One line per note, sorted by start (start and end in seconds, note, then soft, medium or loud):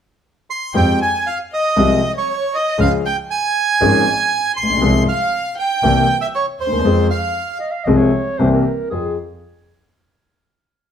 0.50 0.74 C6 medium
0.74 0.96 F2 medium
0.74 0.97 F2 medium
0.74 0.96 F3 medium
0.74 0.97 G#3 soft
0.74 0.97 C4 soft
0.74 0.96 G4 medium
0.74 0.98 G5 medium
0.74 1.00 G5 medium
1.02 1.25 G#5 medium
1.02 1.28 G#5 medium
1.27 1.38 F5 medium
1.27 1.39 F5 medium
1.54 2.12 D#5 medium
1.76 1.98 C2 medium
1.76 1.99 C2 medium
1.76 1.99 C3 medium
1.76 1.98 F3 medium
1.76 1.98 G#3 medium
1.76 1.99 C4 medium
1.76 1.99 G4 medium
2.16 2.51 C#5 medium
2.16 2.56 C#5 medium
2.55 2.78 D#5 medium
2.55 2.80 D#5 medium
2.78 3.00 C#2 medium
2.78 3.00 C#3 medium
2.78 3.00 F3 medium
2.78 3.00 G#3 medium
2.78 2.99 C#4 soft
2.78 3.00 G#4 medium
2.78 2.91 F5 medium
3.06 3.17 G5 medium
3.31 4.52 G#5 medium
3.81 4.01 G#1 medium
3.81 4.02 G#2 medium
3.81 4.01 F3 medium
3.81 4.01 G#3 medium
3.81 4.02 C#4 medium
3.81 4.02 G#4 medium
4.56 4.81 A#1 soft
4.56 5.03 C6 medium
4.63 4.69 A1 soft
4.70 4.75 A#1 medium
4.77 4.82 B1 medium
4.81 5.02 C2 medium
4.81 5.02 C3 medium
4.81 5.02 F3 medium
4.81 5.02 G#3 medium
4.81 5.02 C4 medium
4.81 5.03 G#4 medium
5.08 5.54 F5 medium
5.08 5.55 F5 medium
5.58 6.17 G5 medium
5.83 6.04 C2 medium
5.83 6.04 C3 medium
5.83 6.04 E3 medium
5.83 6.04 A#3 medium
5.83 6.04 C4 medium
5.83 6.04 G4 medium
6.21 6.27 E5 medium
6.34 6.46 C#5 medium
6.59 6.83 D#2 soft
6.59 7.07 C5 medium
6.66 6.72 D2 soft
6.72 6.78 D#2 medium
6.79 6.85 E2 medium
6.84 7.05 F2 medium
6.84 7.06 F2 medium
6.84 7.06 F3 medium
6.84 7.06 G#3 soft
6.84 7.06 C4 soft
6.84 7.06 G#4 medium
7.10 7.58 F5 medium
7.60 7.73 D#5 medium
7.71 7.86 F5 medium
7.84 8.09 C2 medium
7.84 8.09 C3 medium
7.84 8.09 F3 medium
7.84 8.09 G#3 medium
7.84 8.09 C4 medium
7.84 8.09 G#4 medium
7.84 7.99 D#5 medium
7.97 8.39 C#5 medium
8.38 8.61 C2 medium
8.38 8.62 C2 medium
8.38 8.62 C3 medium
8.38 8.62 E3 medium
8.38 8.62 A#3 soft
8.38 8.62 C4 medium
8.38 8.62 G4 medium
8.38 8.51 C5 medium
8.52 8.88 A#4 medium
8.90 9.13 F2 soft
8.90 9.13 C4 soft
8.90 9.13 F4 soft
8.90 9.15 G#4 medium
8.90 9.13 G#4 soft